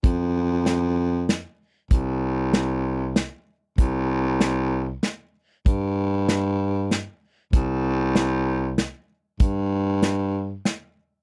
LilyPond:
<<
  \new Staff \with { instrumentName = "Baritone saxophone" } { \clef bass \time 3/4 \key f \major \tempo 4 = 96 f,2. | c,2. | c,2~ c,8 r8 | g,2. |
c,2. | g,2~ g,8 r8 | }
  \new DrumStaff \with { instrumentName = "Drums" } \drummode { \time 3/4 <hh bd>4 <hh sn>4 <hh sn>4 | <hh bd>4 <hh sn>4 <hh sn>4 | <hh bd>4 <hh sn>4 <hh sn>4 | <hh bd>4 <hh sn>4 <hh sn>4 |
<hh bd>4 <hh sn>4 <hh sn>4 | <hh bd>4 <hh sn>4 <hh sn>4 | }
>>